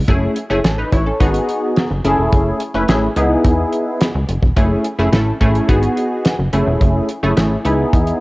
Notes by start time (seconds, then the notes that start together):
0.08 F#1 A3 C#4 E4 G#4, kick, closed hi-hat
0.36 closed hi-hat
0.50 F#1 A3 C#4 E4 G#4
0.64 A1 C#4 A4, snare, closed hi-hat
0.78 D#4 B4
0.92 A1 E4 C#5, kick, closed hi-hat
1.06 C#4 A4
1.20 G#1 B3 D#4 F#4 G#4, kick, closed hi-hat
1.34 closed hi-hat
1.49 closed hi-hat
1.76 snare, closed hi-hat
1.91 F#1
2.04 F#1 A3 C#4 E4 G#4, closed hi-hat
2.19 E1
2.32 F#1, kick, closed hi-hat
2.60 closed hi-hat
2.74 F#1 A3 C#4 E4 B4
2.88 A1 A3 C#4 E4 G#4, snare, closed hi-hat
3.16 C#2 B3 D#4 E4 G#4, closed hi-hat
3.44 E2, kick, closed hi-hat
3.72 closed hi-hat
4.00 snare, closed hi-hat
4.15 C#2
4.29 F#1, closed hi-hat
4.42 E1, kick
4.56 F#1 A3 C#4 E4 G#4, kick, closed hi-hat
4.84 closed hi-hat
4.99 F#1 A3 C#4 E4 G#4
5.12 A1 A3 C#4 E4 A4, snare, closed hi-hat
5.41 A1 A3 C#4 E4 G#4, kick, closed hi-hat
5.55 closed hi-hat
5.69 G#1 B3 D#4 F#4 G#4, kick, closed hi-hat
5.83 closed hi-hat
5.97 closed hi-hat
6.25 snare, closed hi-hat
6.39 F#1
6.53 F#1 A3 C#4 E4 G#4, closed hi-hat
6.67 E1
6.81 F#1, kick, closed hi-hat
7.09 closed hi-hat
7.23 F#1 A3 C#4 E4 G#4
7.37 A1 A3 C#4 E4 G#4, snare, closed hi-hat
7.65 C#2 B3 D#4 E4 G#4, closed hi-hat
7.93 E2, kick, closed hi-hat
8.07 closed hi-hat